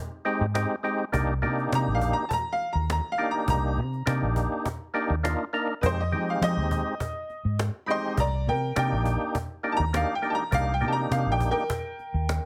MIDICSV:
0, 0, Header, 1, 5, 480
1, 0, Start_track
1, 0, Key_signature, -3, "minor"
1, 0, Tempo, 587084
1, 926, Time_signature, 4, 2, 24, 8
1, 10183, End_track
2, 0, Start_track
2, 0, Title_t, "Upright piano"
2, 0, Program_c, 0, 0
2, 1432, Note_on_c, 0, 82, 102
2, 1574, Note_off_c, 0, 82, 0
2, 1592, Note_on_c, 0, 77, 85
2, 1734, Note_off_c, 0, 77, 0
2, 1743, Note_on_c, 0, 82, 94
2, 1871, Note_on_c, 0, 81, 67
2, 1890, Note_off_c, 0, 82, 0
2, 1898, Note_off_c, 0, 81, 0
2, 1907, Note_on_c, 0, 82, 102
2, 2052, Note_off_c, 0, 82, 0
2, 2065, Note_on_c, 0, 77, 87
2, 2210, Note_off_c, 0, 77, 0
2, 2229, Note_on_c, 0, 82, 76
2, 2373, Note_off_c, 0, 82, 0
2, 2388, Note_on_c, 0, 82, 83
2, 2532, Note_off_c, 0, 82, 0
2, 2551, Note_on_c, 0, 77, 82
2, 2693, Note_off_c, 0, 77, 0
2, 2707, Note_on_c, 0, 82, 83
2, 2850, Note_off_c, 0, 82, 0
2, 2862, Note_on_c, 0, 82, 101
2, 4260, Note_off_c, 0, 82, 0
2, 4753, Note_on_c, 0, 71, 70
2, 4779, Note_off_c, 0, 71, 0
2, 4790, Note_on_c, 0, 72, 96
2, 4893, Note_off_c, 0, 72, 0
2, 4910, Note_on_c, 0, 75, 89
2, 5132, Note_off_c, 0, 75, 0
2, 5151, Note_on_c, 0, 77, 84
2, 5248, Note_off_c, 0, 77, 0
2, 5261, Note_on_c, 0, 75, 113
2, 6183, Note_off_c, 0, 75, 0
2, 6430, Note_on_c, 0, 83, 66
2, 6456, Note_off_c, 0, 83, 0
2, 6463, Note_on_c, 0, 75, 93
2, 6468, Note_on_c, 0, 84, 98
2, 6677, Note_off_c, 0, 75, 0
2, 6689, Note_off_c, 0, 84, 0
2, 6700, Note_on_c, 0, 74, 79
2, 6704, Note_on_c, 0, 82, 92
2, 6916, Note_off_c, 0, 74, 0
2, 6927, Note_off_c, 0, 82, 0
2, 6936, Note_on_c, 0, 70, 74
2, 6940, Note_on_c, 0, 79, 95
2, 7154, Note_off_c, 0, 70, 0
2, 7165, Note_off_c, 0, 79, 0
2, 7186, Note_on_c, 0, 79, 107
2, 7640, Note_off_c, 0, 79, 0
2, 7949, Note_on_c, 0, 81, 67
2, 7976, Note_off_c, 0, 81, 0
2, 7985, Note_on_c, 0, 82, 106
2, 8130, Note_off_c, 0, 82, 0
2, 8145, Note_on_c, 0, 77, 89
2, 8290, Note_off_c, 0, 77, 0
2, 8301, Note_on_c, 0, 79, 81
2, 8422, Note_on_c, 0, 81, 67
2, 8448, Note_off_c, 0, 79, 0
2, 8451, Note_off_c, 0, 81, 0
2, 8461, Note_on_c, 0, 82, 93
2, 8608, Note_off_c, 0, 82, 0
2, 8620, Note_on_c, 0, 77, 111
2, 8767, Note_off_c, 0, 77, 0
2, 8779, Note_on_c, 0, 79, 91
2, 8895, Note_on_c, 0, 81, 68
2, 8925, Note_off_c, 0, 81, 0
2, 8927, Note_off_c, 0, 79, 0
2, 8932, Note_on_c, 0, 82, 96
2, 9083, Note_off_c, 0, 82, 0
2, 9092, Note_on_c, 0, 77, 85
2, 9243, Note_off_c, 0, 77, 0
2, 9253, Note_on_c, 0, 79, 100
2, 9403, Note_off_c, 0, 79, 0
2, 9410, Note_on_c, 0, 70, 93
2, 9415, Note_on_c, 0, 79, 98
2, 10183, Note_off_c, 0, 70, 0
2, 10183, Note_off_c, 0, 79, 0
2, 10183, End_track
3, 0, Start_track
3, 0, Title_t, "Tonewheel organ"
3, 0, Program_c, 1, 16
3, 204, Note_on_c, 1, 56, 95
3, 205, Note_on_c, 1, 60, 94
3, 208, Note_on_c, 1, 63, 91
3, 211, Note_on_c, 1, 67, 107
3, 376, Note_off_c, 1, 56, 0
3, 377, Note_off_c, 1, 60, 0
3, 378, Note_off_c, 1, 63, 0
3, 380, Note_off_c, 1, 67, 0
3, 444, Note_on_c, 1, 56, 86
3, 447, Note_on_c, 1, 60, 79
3, 449, Note_on_c, 1, 63, 79
3, 451, Note_on_c, 1, 67, 96
3, 616, Note_off_c, 1, 56, 0
3, 618, Note_off_c, 1, 60, 0
3, 618, Note_off_c, 1, 63, 0
3, 620, Note_off_c, 1, 67, 0
3, 680, Note_on_c, 1, 56, 92
3, 685, Note_on_c, 1, 60, 90
3, 689, Note_on_c, 1, 63, 92
3, 691, Note_on_c, 1, 67, 98
3, 854, Note_off_c, 1, 56, 0
3, 857, Note_off_c, 1, 60, 0
3, 858, Note_off_c, 1, 63, 0
3, 859, Note_off_c, 1, 67, 0
3, 919, Note_on_c, 1, 58, 88
3, 922, Note_on_c, 1, 62, 77
3, 926, Note_on_c, 1, 63, 76
3, 927, Note_on_c, 1, 67, 100
3, 1093, Note_off_c, 1, 58, 0
3, 1095, Note_off_c, 1, 62, 0
3, 1097, Note_off_c, 1, 63, 0
3, 1098, Note_off_c, 1, 67, 0
3, 1161, Note_on_c, 1, 58, 85
3, 1163, Note_on_c, 1, 62, 75
3, 1165, Note_on_c, 1, 63, 73
3, 1169, Note_on_c, 1, 67, 92
3, 1838, Note_off_c, 1, 58, 0
3, 1839, Note_off_c, 1, 62, 0
3, 1841, Note_off_c, 1, 63, 0
3, 1843, Note_off_c, 1, 67, 0
3, 2599, Note_on_c, 1, 58, 77
3, 2602, Note_on_c, 1, 62, 75
3, 2604, Note_on_c, 1, 63, 71
3, 2607, Note_on_c, 1, 67, 91
3, 3108, Note_off_c, 1, 58, 0
3, 3109, Note_off_c, 1, 62, 0
3, 3111, Note_off_c, 1, 63, 0
3, 3112, Note_off_c, 1, 67, 0
3, 3317, Note_on_c, 1, 58, 83
3, 3321, Note_on_c, 1, 62, 72
3, 3321, Note_on_c, 1, 63, 72
3, 3326, Note_on_c, 1, 67, 86
3, 3827, Note_off_c, 1, 58, 0
3, 3829, Note_off_c, 1, 62, 0
3, 3829, Note_off_c, 1, 63, 0
3, 3832, Note_off_c, 1, 67, 0
3, 4037, Note_on_c, 1, 58, 98
3, 4040, Note_on_c, 1, 62, 81
3, 4042, Note_on_c, 1, 63, 91
3, 4044, Note_on_c, 1, 67, 110
3, 4211, Note_off_c, 1, 58, 0
3, 4213, Note_off_c, 1, 62, 0
3, 4214, Note_off_c, 1, 63, 0
3, 4215, Note_off_c, 1, 67, 0
3, 4279, Note_on_c, 1, 58, 79
3, 4282, Note_on_c, 1, 62, 78
3, 4285, Note_on_c, 1, 63, 73
3, 4287, Note_on_c, 1, 65, 96
3, 4452, Note_off_c, 1, 58, 0
3, 4454, Note_off_c, 1, 62, 0
3, 4455, Note_off_c, 1, 63, 0
3, 4456, Note_off_c, 1, 65, 0
3, 4521, Note_on_c, 1, 58, 96
3, 4525, Note_on_c, 1, 62, 91
3, 4528, Note_on_c, 1, 63, 87
3, 4530, Note_on_c, 1, 70, 103
3, 4694, Note_off_c, 1, 58, 0
3, 4695, Note_off_c, 1, 62, 0
3, 4697, Note_off_c, 1, 63, 0
3, 4698, Note_off_c, 1, 70, 0
3, 4762, Note_on_c, 1, 56, 71
3, 4766, Note_on_c, 1, 60, 66
3, 4768, Note_on_c, 1, 63, 66
3, 4768, Note_on_c, 1, 67, 78
3, 4934, Note_off_c, 1, 56, 0
3, 4936, Note_off_c, 1, 60, 0
3, 4937, Note_off_c, 1, 63, 0
3, 4937, Note_off_c, 1, 67, 0
3, 5002, Note_on_c, 1, 56, 68
3, 5007, Note_on_c, 1, 60, 62
3, 5007, Note_on_c, 1, 63, 64
3, 5008, Note_on_c, 1, 67, 78
3, 5678, Note_off_c, 1, 56, 0
3, 5681, Note_off_c, 1, 60, 0
3, 5681, Note_off_c, 1, 63, 0
3, 5681, Note_off_c, 1, 67, 0
3, 6438, Note_on_c, 1, 56, 80
3, 6441, Note_on_c, 1, 60, 74
3, 6443, Note_on_c, 1, 63, 71
3, 6447, Note_on_c, 1, 67, 94
3, 6681, Note_off_c, 1, 56, 0
3, 6682, Note_off_c, 1, 60, 0
3, 6683, Note_off_c, 1, 63, 0
3, 6685, Note_off_c, 1, 67, 0
3, 7160, Note_on_c, 1, 58, 74
3, 7164, Note_on_c, 1, 62, 73
3, 7165, Note_on_c, 1, 63, 72
3, 7169, Note_on_c, 1, 67, 94
3, 7668, Note_off_c, 1, 58, 0
3, 7670, Note_off_c, 1, 62, 0
3, 7671, Note_off_c, 1, 63, 0
3, 7673, Note_off_c, 1, 67, 0
3, 7877, Note_on_c, 1, 58, 79
3, 7881, Note_on_c, 1, 62, 82
3, 7882, Note_on_c, 1, 63, 78
3, 7884, Note_on_c, 1, 67, 92
3, 8051, Note_off_c, 1, 58, 0
3, 8053, Note_off_c, 1, 62, 0
3, 8054, Note_off_c, 1, 63, 0
3, 8055, Note_off_c, 1, 67, 0
3, 8120, Note_on_c, 1, 58, 75
3, 8123, Note_on_c, 1, 62, 66
3, 8124, Note_on_c, 1, 63, 69
3, 8126, Note_on_c, 1, 67, 85
3, 8293, Note_off_c, 1, 58, 0
3, 8294, Note_off_c, 1, 62, 0
3, 8295, Note_off_c, 1, 63, 0
3, 8296, Note_off_c, 1, 67, 0
3, 8357, Note_on_c, 1, 58, 88
3, 8361, Note_on_c, 1, 62, 82
3, 8363, Note_on_c, 1, 63, 77
3, 8364, Note_on_c, 1, 67, 87
3, 8531, Note_off_c, 1, 58, 0
3, 8533, Note_off_c, 1, 62, 0
3, 8534, Note_off_c, 1, 63, 0
3, 8535, Note_off_c, 1, 67, 0
3, 8594, Note_on_c, 1, 58, 69
3, 8598, Note_on_c, 1, 62, 66
3, 8602, Note_on_c, 1, 63, 70
3, 8605, Note_on_c, 1, 67, 78
3, 8769, Note_off_c, 1, 58, 0
3, 8772, Note_off_c, 1, 62, 0
3, 8774, Note_off_c, 1, 63, 0
3, 8775, Note_off_c, 1, 67, 0
3, 8835, Note_on_c, 1, 58, 73
3, 8838, Note_on_c, 1, 62, 60
3, 8841, Note_on_c, 1, 63, 64
3, 8843, Note_on_c, 1, 67, 83
3, 9515, Note_off_c, 1, 58, 0
3, 9516, Note_off_c, 1, 62, 0
3, 9518, Note_off_c, 1, 63, 0
3, 9519, Note_off_c, 1, 67, 0
3, 10183, End_track
4, 0, Start_track
4, 0, Title_t, "Fingered electric bass"
4, 0, Program_c, 2, 33
4, 333, Note_on_c, 2, 44, 86
4, 526, Note_off_c, 2, 44, 0
4, 929, Note_on_c, 2, 36, 106
4, 1168, Note_on_c, 2, 48, 92
4, 1180, Note_off_c, 2, 36, 0
4, 1361, Note_off_c, 2, 48, 0
4, 1407, Note_on_c, 2, 48, 104
4, 1533, Note_on_c, 2, 34, 84
4, 1546, Note_off_c, 2, 48, 0
4, 1726, Note_off_c, 2, 34, 0
4, 2249, Note_on_c, 2, 39, 90
4, 2443, Note_off_c, 2, 39, 0
4, 2844, Note_on_c, 2, 36, 105
4, 3085, Note_on_c, 2, 48, 91
4, 3097, Note_off_c, 2, 36, 0
4, 3278, Note_off_c, 2, 48, 0
4, 3328, Note_on_c, 2, 48, 103
4, 3451, Note_on_c, 2, 34, 83
4, 3463, Note_off_c, 2, 48, 0
4, 3644, Note_off_c, 2, 34, 0
4, 4169, Note_on_c, 2, 39, 88
4, 4363, Note_off_c, 2, 39, 0
4, 4768, Note_on_c, 2, 41, 102
4, 5005, Note_on_c, 2, 53, 91
4, 5017, Note_off_c, 2, 41, 0
4, 5198, Note_off_c, 2, 53, 0
4, 5242, Note_on_c, 2, 53, 99
4, 5368, Note_on_c, 2, 39, 76
4, 5381, Note_off_c, 2, 53, 0
4, 5562, Note_off_c, 2, 39, 0
4, 6090, Note_on_c, 2, 44, 85
4, 6283, Note_off_c, 2, 44, 0
4, 6684, Note_on_c, 2, 36, 101
4, 6928, Note_on_c, 2, 48, 87
4, 6940, Note_off_c, 2, 36, 0
4, 7120, Note_off_c, 2, 48, 0
4, 7169, Note_on_c, 2, 48, 106
4, 7292, Note_on_c, 2, 34, 86
4, 7305, Note_off_c, 2, 48, 0
4, 7485, Note_off_c, 2, 34, 0
4, 8008, Note_on_c, 2, 39, 93
4, 8202, Note_off_c, 2, 39, 0
4, 8604, Note_on_c, 2, 36, 102
4, 8842, Note_on_c, 2, 48, 106
4, 8854, Note_off_c, 2, 36, 0
4, 9037, Note_off_c, 2, 48, 0
4, 9082, Note_on_c, 2, 48, 103
4, 9208, Note_on_c, 2, 34, 86
4, 9220, Note_off_c, 2, 48, 0
4, 9402, Note_off_c, 2, 34, 0
4, 9926, Note_on_c, 2, 39, 97
4, 10120, Note_off_c, 2, 39, 0
4, 10183, End_track
5, 0, Start_track
5, 0, Title_t, "Cajon"
5, 94, Note_on_c, 9, 38, 20
5, 176, Note_off_c, 9, 38, 0
5, 211, Note_on_c, 9, 38, 35
5, 293, Note_off_c, 9, 38, 0
5, 452, Note_on_c, 9, 38, 113
5, 533, Note_off_c, 9, 38, 0
5, 690, Note_on_c, 9, 38, 33
5, 772, Note_off_c, 9, 38, 0
5, 929, Note_on_c, 9, 36, 105
5, 1011, Note_off_c, 9, 36, 0
5, 1168, Note_on_c, 9, 38, 34
5, 1250, Note_off_c, 9, 38, 0
5, 1297, Note_on_c, 9, 38, 35
5, 1379, Note_off_c, 9, 38, 0
5, 1410, Note_on_c, 9, 38, 100
5, 1492, Note_off_c, 9, 38, 0
5, 1647, Note_on_c, 9, 36, 77
5, 1728, Note_off_c, 9, 36, 0
5, 1886, Note_on_c, 9, 36, 110
5, 1967, Note_off_c, 9, 36, 0
5, 2123, Note_on_c, 9, 38, 41
5, 2205, Note_off_c, 9, 38, 0
5, 2369, Note_on_c, 9, 38, 114
5, 2451, Note_off_c, 9, 38, 0
5, 2488, Note_on_c, 9, 38, 22
5, 2569, Note_off_c, 9, 38, 0
5, 2602, Note_on_c, 9, 38, 37
5, 2684, Note_off_c, 9, 38, 0
5, 2844, Note_on_c, 9, 36, 115
5, 2926, Note_off_c, 9, 36, 0
5, 3082, Note_on_c, 9, 38, 34
5, 3164, Note_off_c, 9, 38, 0
5, 3214, Note_on_c, 9, 38, 37
5, 3296, Note_off_c, 9, 38, 0
5, 3328, Note_on_c, 9, 38, 106
5, 3410, Note_off_c, 9, 38, 0
5, 3566, Note_on_c, 9, 36, 89
5, 3647, Note_off_c, 9, 36, 0
5, 3806, Note_on_c, 9, 36, 107
5, 3888, Note_off_c, 9, 36, 0
5, 3932, Note_on_c, 9, 38, 19
5, 4013, Note_off_c, 9, 38, 0
5, 4046, Note_on_c, 9, 38, 34
5, 4128, Note_off_c, 9, 38, 0
5, 4291, Note_on_c, 9, 38, 123
5, 4373, Note_off_c, 9, 38, 0
5, 4530, Note_on_c, 9, 38, 31
5, 4612, Note_off_c, 9, 38, 0
5, 4767, Note_on_c, 9, 36, 123
5, 4849, Note_off_c, 9, 36, 0
5, 5008, Note_on_c, 9, 38, 34
5, 5090, Note_off_c, 9, 38, 0
5, 5138, Note_on_c, 9, 38, 35
5, 5219, Note_off_c, 9, 38, 0
5, 5253, Note_on_c, 9, 38, 110
5, 5334, Note_off_c, 9, 38, 0
5, 5487, Note_on_c, 9, 36, 84
5, 5569, Note_off_c, 9, 36, 0
5, 5726, Note_on_c, 9, 36, 112
5, 5808, Note_off_c, 9, 36, 0
5, 5967, Note_on_c, 9, 38, 37
5, 6049, Note_off_c, 9, 38, 0
5, 6209, Note_on_c, 9, 38, 118
5, 6291, Note_off_c, 9, 38, 0
5, 6329, Note_on_c, 9, 38, 25
5, 6411, Note_off_c, 9, 38, 0
5, 6444, Note_on_c, 9, 38, 38
5, 6525, Note_off_c, 9, 38, 0
5, 6683, Note_on_c, 9, 36, 115
5, 6765, Note_off_c, 9, 36, 0
5, 6922, Note_on_c, 9, 38, 37
5, 7003, Note_off_c, 9, 38, 0
5, 7165, Note_on_c, 9, 38, 106
5, 7247, Note_off_c, 9, 38, 0
5, 7403, Note_on_c, 9, 36, 80
5, 7485, Note_off_c, 9, 36, 0
5, 7643, Note_on_c, 9, 36, 125
5, 7725, Note_off_c, 9, 36, 0
5, 7769, Note_on_c, 9, 38, 22
5, 7851, Note_off_c, 9, 38, 0
5, 7883, Note_on_c, 9, 38, 34
5, 7965, Note_off_c, 9, 38, 0
5, 8128, Note_on_c, 9, 38, 124
5, 8209, Note_off_c, 9, 38, 0
5, 8364, Note_on_c, 9, 38, 36
5, 8446, Note_off_c, 9, 38, 0
5, 8603, Note_on_c, 9, 36, 105
5, 8685, Note_off_c, 9, 36, 0
5, 8844, Note_on_c, 9, 38, 33
5, 8926, Note_off_c, 9, 38, 0
5, 8977, Note_on_c, 9, 38, 33
5, 9059, Note_off_c, 9, 38, 0
5, 9089, Note_on_c, 9, 38, 103
5, 9170, Note_off_c, 9, 38, 0
5, 9324, Note_on_c, 9, 36, 85
5, 9406, Note_off_c, 9, 36, 0
5, 9564, Note_on_c, 9, 36, 124
5, 9646, Note_off_c, 9, 36, 0
5, 9805, Note_on_c, 9, 38, 39
5, 9886, Note_off_c, 9, 38, 0
5, 10049, Note_on_c, 9, 38, 127
5, 10131, Note_off_c, 9, 38, 0
5, 10183, End_track
0, 0, End_of_file